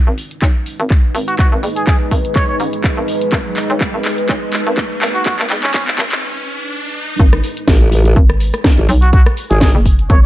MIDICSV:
0, 0, Header, 1, 7, 480
1, 0, Start_track
1, 0, Tempo, 483871
1, 1378, Time_signature, 4, 2, 24, 8
1, 10177, End_track
2, 0, Start_track
2, 0, Title_t, "Muted trumpet"
2, 0, Program_c, 0, 59
2, 1269, Note_on_c, 0, 66, 90
2, 1338, Note_off_c, 0, 66, 0
2, 1378, Note_on_c, 0, 66, 67
2, 1463, Note_off_c, 0, 66, 0
2, 1749, Note_on_c, 0, 68, 82
2, 1819, Note_off_c, 0, 68, 0
2, 1856, Note_on_c, 0, 68, 70
2, 1942, Note_off_c, 0, 68, 0
2, 2335, Note_on_c, 0, 73, 83
2, 2421, Note_off_c, 0, 73, 0
2, 2470, Note_on_c, 0, 73, 77
2, 2539, Note_off_c, 0, 73, 0
2, 5110, Note_on_c, 0, 66, 96
2, 5179, Note_off_c, 0, 66, 0
2, 5217, Note_on_c, 0, 66, 75
2, 5302, Note_off_c, 0, 66, 0
2, 5590, Note_on_c, 0, 61, 92
2, 5659, Note_off_c, 0, 61, 0
2, 5697, Note_on_c, 0, 61, 69
2, 5782, Note_off_c, 0, 61, 0
2, 8950, Note_on_c, 0, 66, 92
2, 9019, Note_off_c, 0, 66, 0
2, 9057, Note_on_c, 0, 66, 74
2, 9142, Note_off_c, 0, 66, 0
2, 9430, Note_on_c, 0, 68, 83
2, 9499, Note_off_c, 0, 68, 0
2, 9539, Note_on_c, 0, 68, 74
2, 9623, Note_off_c, 0, 68, 0
2, 10017, Note_on_c, 0, 73, 82
2, 10102, Note_off_c, 0, 73, 0
2, 10177, End_track
3, 0, Start_track
3, 0, Title_t, "Ambient pad"
3, 0, Program_c, 1, 92
3, 0, Note_on_c, 1, 56, 71
3, 0, Note_on_c, 1, 63, 67
3, 0, Note_on_c, 1, 71, 85
3, 7098, Note_off_c, 1, 56, 0
3, 7098, Note_off_c, 1, 63, 0
3, 7098, Note_off_c, 1, 71, 0
3, 10177, End_track
4, 0, Start_track
4, 0, Title_t, "FM bass"
4, 0, Program_c, 2, 39
4, 71, Note_on_c, 2, 32, 94
4, 401, Note_off_c, 2, 32, 0
4, 418, Note_on_c, 2, 35, 96
4, 769, Note_off_c, 2, 35, 0
4, 791, Note_on_c, 2, 32, 98
4, 1121, Note_off_c, 2, 32, 0
4, 1137, Note_on_c, 2, 32, 103
4, 1489, Note_off_c, 2, 32, 0
4, 1511, Note_on_c, 2, 32, 98
4, 1601, Note_off_c, 2, 32, 0
4, 1618, Note_on_c, 2, 30, 98
4, 2081, Note_off_c, 2, 30, 0
4, 2098, Note_on_c, 2, 32, 100
4, 2560, Note_off_c, 2, 32, 0
4, 2578, Note_on_c, 2, 33, 95
4, 2929, Note_off_c, 2, 33, 0
4, 2951, Note_on_c, 2, 32, 96
4, 3281, Note_off_c, 2, 32, 0
4, 3297, Note_on_c, 2, 32, 95
4, 3649, Note_off_c, 2, 32, 0
4, 3670, Note_on_c, 2, 35, 96
4, 3889, Note_off_c, 2, 35, 0
4, 3910, Note_on_c, 2, 32, 92
4, 4240, Note_off_c, 2, 32, 0
4, 4257, Note_on_c, 2, 35, 102
4, 4609, Note_off_c, 2, 35, 0
4, 4630, Note_on_c, 2, 32, 100
4, 4960, Note_off_c, 2, 32, 0
4, 4977, Note_on_c, 2, 32, 101
4, 5329, Note_off_c, 2, 32, 0
4, 5350, Note_on_c, 2, 32, 104
4, 5440, Note_off_c, 2, 32, 0
4, 5458, Note_on_c, 2, 30, 100
4, 5920, Note_off_c, 2, 30, 0
4, 5937, Note_on_c, 2, 32, 99
4, 6177, Note_off_c, 2, 32, 0
4, 7137, Note_on_c, 2, 32, 96
4, 7360, Note_off_c, 2, 32, 0
4, 8098, Note_on_c, 2, 32, 100
4, 8449, Note_off_c, 2, 32, 0
4, 8818, Note_on_c, 2, 35, 101
4, 9169, Note_off_c, 2, 35, 0
4, 9671, Note_on_c, 2, 30, 99
4, 10001, Note_off_c, 2, 30, 0
4, 10018, Note_on_c, 2, 32, 98
4, 10177, Note_off_c, 2, 32, 0
4, 10177, End_track
5, 0, Start_track
5, 0, Title_t, "Wobble bass"
5, 0, Program_c, 3, 39
5, 7617, Note_on_c, 3, 33, 101
5, 8080, Note_off_c, 3, 33, 0
5, 8710, Note_on_c, 3, 32, 99
5, 8800, Note_off_c, 3, 32, 0
5, 9431, Note_on_c, 3, 32, 97
5, 9649, Note_off_c, 3, 32, 0
5, 10177, End_track
6, 0, Start_track
6, 0, Title_t, "Riser"
6, 0, Program_c, 4, 103
6, 0, Note_on_c, 4, 60, 77
6, 7138, Note_off_c, 4, 60, 0
6, 10177, End_track
7, 0, Start_track
7, 0, Title_t, "Drums"
7, 177, Note_on_c, 9, 46, 94
7, 276, Note_off_c, 9, 46, 0
7, 310, Note_on_c, 9, 42, 67
7, 409, Note_off_c, 9, 42, 0
7, 417, Note_on_c, 9, 36, 113
7, 417, Note_on_c, 9, 39, 54
7, 417, Note_on_c, 9, 42, 52
7, 516, Note_off_c, 9, 39, 0
7, 516, Note_off_c, 9, 42, 0
7, 517, Note_off_c, 9, 36, 0
7, 657, Note_on_c, 9, 46, 103
7, 756, Note_off_c, 9, 46, 0
7, 790, Note_on_c, 9, 42, 62
7, 889, Note_off_c, 9, 42, 0
7, 897, Note_on_c, 9, 36, 118
7, 897, Note_on_c, 9, 39, 51
7, 897, Note_on_c, 9, 42, 52
7, 996, Note_off_c, 9, 39, 0
7, 996, Note_off_c, 9, 42, 0
7, 997, Note_off_c, 9, 36, 0
7, 1137, Note_on_c, 9, 46, 94
7, 1236, Note_off_c, 9, 46, 0
7, 1270, Note_on_c, 9, 42, 66
7, 1369, Note_off_c, 9, 42, 0
7, 1377, Note_on_c, 9, 36, 118
7, 1377, Note_on_c, 9, 39, 59
7, 1377, Note_on_c, 9, 42, 52
7, 1477, Note_off_c, 9, 36, 0
7, 1477, Note_off_c, 9, 39, 0
7, 1477, Note_off_c, 9, 42, 0
7, 1617, Note_on_c, 9, 46, 100
7, 1716, Note_off_c, 9, 46, 0
7, 1750, Note_on_c, 9, 42, 66
7, 1849, Note_off_c, 9, 42, 0
7, 1857, Note_on_c, 9, 36, 115
7, 1857, Note_on_c, 9, 39, 64
7, 1857, Note_on_c, 9, 42, 50
7, 1956, Note_off_c, 9, 39, 0
7, 1956, Note_off_c, 9, 42, 0
7, 1957, Note_off_c, 9, 36, 0
7, 2097, Note_on_c, 9, 36, 60
7, 2097, Note_on_c, 9, 46, 94
7, 2196, Note_off_c, 9, 46, 0
7, 2197, Note_off_c, 9, 36, 0
7, 2230, Note_on_c, 9, 42, 63
7, 2329, Note_off_c, 9, 42, 0
7, 2337, Note_on_c, 9, 36, 121
7, 2337, Note_on_c, 9, 39, 67
7, 2337, Note_on_c, 9, 42, 52
7, 2436, Note_off_c, 9, 39, 0
7, 2436, Note_off_c, 9, 42, 0
7, 2437, Note_off_c, 9, 36, 0
7, 2577, Note_on_c, 9, 46, 102
7, 2676, Note_off_c, 9, 46, 0
7, 2710, Note_on_c, 9, 42, 68
7, 2809, Note_off_c, 9, 42, 0
7, 2817, Note_on_c, 9, 36, 123
7, 2817, Note_on_c, 9, 39, 69
7, 2817, Note_on_c, 9, 42, 51
7, 2916, Note_off_c, 9, 36, 0
7, 2916, Note_off_c, 9, 39, 0
7, 2916, Note_off_c, 9, 42, 0
7, 3057, Note_on_c, 9, 46, 101
7, 3156, Note_off_c, 9, 46, 0
7, 3189, Note_on_c, 9, 42, 62
7, 3288, Note_off_c, 9, 42, 0
7, 3296, Note_on_c, 9, 39, 70
7, 3296, Note_on_c, 9, 42, 50
7, 3297, Note_on_c, 9, 36, 123
7, 3396, Note_off_c, 9, 36, 0
7, 3396, Note_off_c, 9, 39, 0
7, 3396, Note_off_c, 9, 42, 0
7, 3536, Note_on_c, 9, 39, 69
7, 3536, Note_on_c, 9, 46, 105
7, 3636, Note_off_c, 9, 39, 0
7, 3636, Note_off_c, 9, 46, 0
7, 3669, Note_on_c, 9, 42, 67
7, 3769, Note_off_c, 9, 42, 0
7, 3777, Note_on_c, 9, 36, 125
7, 3777, Note_on_c, 9, 39, 80
7, 3777, Note_on_c, 9, 42, 50
7, 3876, Note_off_c, 9, 36, 0
7, 3876, Note_off_c, 9, 39, 0
7, 3876, Note_off_c, 9, 42, 0
7, 4017, Note_on_c, 9, 39, 78
7, 4017, Note_on_c, 9, 46, 93
7, 4116, Note_off_c, 9, 39, 0
7, 4116, Note_off_c, 9, 46, 0
7, 4149, Note_on_c, 9, 42, 66
7, 4248, Note_off_c, 9, 42, 0
7, 4257, Note_on_c, 9, 36, 120
7, 4257, Note_on_c, 9, 39, 85
7, 4257, Note_on_c, 9, 42, 50
7, 4356, Note_off_c, 9, 36, 0
7, 4356, Note_off_c, 9, 39, 0
7, 4356, Note_off_c, 9, 42, 0
7, 4496, Note_on_c, 9, 39, 81
7, 4496, Note_on_c, 9, 46, 112
7, 4595, Note_off_c, 9, 39, 0
7, 4595, Note_off_c, 9, 46, 0
7, 4629, Note_on_c, 9, 42, 61
7, 4728, Note_off_c, 9, 42, 0
7, 4736, Note_on_c, 9, 39, 86
7, 4736, Note_on_c, 9, 42, 49
7, 4737, Note_on_c, 9, 36, 122
7, 4836, Note_off_c, 9, 36, 0
7, 4836, Note_off_c, 9, 39, 0
7, 4836, Note_off_c, 9, 42, 0
7, 4976, Note_on_c, 9, 39, 93
7, 4976, Note_on_c, 9, 46, 105
7, 5075, Note_off_c, 9, 39, 0
7, 5075, Note_off_c, 9, 46, 0
7, 5109, Note_on_c, 9, 42, 63
7, 5208, Note_off_c, 9, 42, 0
7, 5216, Note_on_c, 9, 39, 88
7, 5216, Note_on_c, 9, 42, 52
7, 5217, Note_on_c, 9, 36, 119
7, 5316, Note_off_c, 9, 36, 0
7, 5316, Note_off_c, 9, 39, 0
7, 5316, Note_off_c, 9, 42, 0
7, 5349, Note_on_c, 9, 39, 80
7, 5448, Note_off_c, 9, 39, 0
7, 5457, Note_on_c, 9, 39, 91
7, 5457, Note_on_c, 9, 46, 102
7, 5556, Note_off_c, 9, 39, 0
7, 5556, Note_off_c, 9, 46, 0
7, 5589, Note_on_c, 9, 39, 83
7, 5589, Note_on_c, 9, 42, 62
7, 5689, Note_off_c, 9, 39, 0
7, 5689, Note_off_c, 9, 42, 0
7, 5697, Note_on_c, 9, 36, 125
7, 5697, Note_on_c, 9, 39, 97
7, 5697, Note_on_c, 9, 42, 50
7, 5796, Note_off_c, 9, 36, 0
7, 5796, Note_off_c, 9, 39, 0
7, 5796, Note_off_c, 9, 42, 0
7, 5829, Note_on_c, 9, 39, 84
7, 5928, Note_off_c, 9, 39, 0
7, 5936, Note_on_c, 9, 39, 97
7, 5936, Note_on_c, 9, 46, 103
7, 5937, Note_on_c, 9, 36, 61
7, 6036, Note_off_c, 9, 36, 0
7, 6036, Note_off_c, 9, 39, 0
7, 6036, Note_off_c, 9, 46, 0
7, 6069, Note_on_c, 9, 39, 85
7, 6069, Note_on_c, 9, 42, 62
7, 6169, Note_off_c, 9, 39, 0
7, 6169, Note_off_c, 9, 42, 0
7, 7137, Note_on_c, 9, 42, 52
7, 7138, Note_on_c, 9, 36, 112
7, 7140, Note_on_c, 9, 69, 51
7, 7236, Note_off_c, 9, 42, 0
7, 7237, Note_off_c, 9, 36, 0
7, 7239, Note_off_c, 9, 69, 0
7, 7267, Note_on_c, 9, 69, 38
7, 7270, Note_on_c, 9, 37, 85
7, 7366, Note_off_c, 9, 69, 0
7, 7369, Note_off_c, 9, 37, 0
7, 7377, Note_on_c, 9, 46, 102
7, 7383, Note_on_c, 9, 69, 91
7, 7476, Note_off_c, 9, 46, 0
7, 7482, Note_off_c, 9, 69, 0
7, 7504, Note_on_c, 9, 69, 36
7, 7510, Note_on_c, 9, 42, 74
7, 7603, Note_off_c, 9, 69, 0
7, 7609, Note_off_c, 9, 42, 0
7, 7612, Note_on_c, 9, 69, 52
7, 7614, Note_on_c, 9, 38, 127
7, 7617, Note_on_c, 9, 42, 57
7, 7618, Note_on_c, 9, 36, 124
7, 7711, Note_off_c, 9, 69, 0
7, 7714, Note_off_c, 9, 38, 0
7, 7716, Note_off_c, 9, 42, 0
7, 7717, Note_off_c, 9, 36, 0
7, 7749, Note_on_c, 9, 69, 37
7, 7848, Note_off_c, 9, 69, 0
7, 7857, Note_on_c, 9, 46, 110
7, 7861, Note_on_c, 9, 69, 94
7, 7956, Note_off_c, 9, 46, 0
7, 7960, Note_off_c, 9, 69, 0
7, 7990, Note_on_c, 9, 42, 69
7, 7993, Note_on_c, 9, 69, 40
7, 8089, Note_off_c, 9, 42, 0
7, 8092, Note_off_c, 9, 69, 0
7, 8097, Note_on_c, 9, 42, 59
7, 8098, Note_on_c, 9, 36, 120
7, 8100, Note_on_c, 9, 69, 62
7, 8196, Note_off_c, 9, 42, 0
7, 8197, Note_off_c, 9, 36, 0
7, 8200, Note_off_c, 9, 69, 0
7, 8229, Note_on_c, 9, 37, 75
7, 8232, Note_on_c, 9, 69, 39
7, 8329, Note_off_c, 9, 37, 0
7, 8331, Note_off_c, 9, 69, 0
7, 8337, Note_on_c, 9, 46, 104
7, 8339, Note_on_c, 9, 69, 85
7, 8436, Note_off_c, 9, 46, 0
7, 8438, Note_off_c, 9, 69, 0
7, 8467, Note_on_c, 9, 69, 38
7, 8469, Note_on_c, 9, 37, 77
7, 8469, Note_on_c, 9, 42, 68
7, 8566, Note_off_c, 9, 69, 0
7, 8568, Note_off_c, 9, 37, 0
7, 8568, Note_off_c, 9, 42, 0
7, 8574, Note_on_c, 9, 38, 127
7, 8575, Note_on_c, 9, 69, 57
7, 8577, Note_on_c, 9, 42, 54
7, 8578, Note_on_c, 9, 36, 118
7, 8673, Note_off_c, 9, 38, 0
7, 8674, Note_off_c, 9, 69, 0
7, 8676, Note_off_c, 9, 42, 0
7, 8677, Note_off_c, 9, 36, 0
7, 8717, Note_on_c, 9, 69, 36
7, 8816, Note_off_c, 9, 69, 0
7, 8816, Note_on_c, 9, 46, 112
7, 8819, Note_on_c, 9, 69, 95
7, 8915, Note_off_c, 9, 46, 0
7, 8918, Note_off_c, 9, 69, 0
7, 8948, Note_on_c, 9, 69, 36
7, 8950, Note_on_c, 9, 42, 69
7, 9047, Note_off_c, 9, 69, 0
7, 9049, Note_off_c, 9, 42, 0
7, 9057, Note_on_c, 9, 42, 56
7, 9058, Note_on_c, 9, 36, 122
7, 9059, Note_on_c, 9, 69, 57
7, 9156, Note_off_c, 9, 42, 0
7, 9157, Note_off_c, 9, 36, 0
7, 9158, Note_off_c, 9, 69, 0
7, 9190, Note_on_c, 9, 37, 81
7, 9193, Note_on_c, 9, 69, 39
7, 9289, Note_off_c, 9, 37, 0
7, 9292, Note_off_c, 9, 69, 0
7, 9294, Note_on_c, 9, 69, 94
7, 9297, Note_on_c, 9, 46, 103
7, 9393, Note_off_c, 9, 69, 0
7, 9396, Note_off_c, 9, 46, 0
7, 9425, Note_on_c, 9, 69, 41
7, 9430, Note_on_c, 9, 42, 69
7, 9525, Note_off_c, 9, 69, 0
7, 9529, Note_off_c, 9, 42, 0
7, 9535, Note_on_c, 9, 38, 127
7, 9537, Note_on_c, 9, 42, 55
7, 9538, Note_on_c, 9, 36, 120
7, 9543, Note_on_c, 9, 69, 61
7, 9634, Note_off_c, 9, 38, 0
7, 9636, Note_off_c, 9, 42, 0
7, 9637, Note_off_c, 9, 36, 0
7, 9642, Note_off_c, 9, 69, 0
7, 9670, Note_on_c, 9, 69, 41
7, 9770, Note_off_c, 9, 69, 0
7, 9777, Note_on_c, 9, 46, 111
7, 9778, Note_on_c, 9, 36, 63
7, 9781, Note_on_c, 9, 69, 98
7, 9876, Note_off_c, 9, 46, 0
7, 9877, Note_off_c, 9, 36, 0
7, 9881, Note_off_c, 9, 69, 0
7, 9910, Note_on_c, 9, 42, 69
7, 9914, Note_on_c, 9, 69, 39
7, 10009, Note_off_c, 9, 42, 0
7, 10013, Note_off_c, 9, 69, 0
7, 10017, Note_on_c, 9, 42, 58
7, 10018, Note_on_c, 9, 36, 123
7, 10024, Note_on_c, 9, 69, 57
7, 10116, Note_off_c, 9, 42, 0
7, 10117, Note_off_c, 9, 36, 0
7, 10123, Note_off_c, 9, 69, 0
7, 10177, End_track
0, 0, End_of_file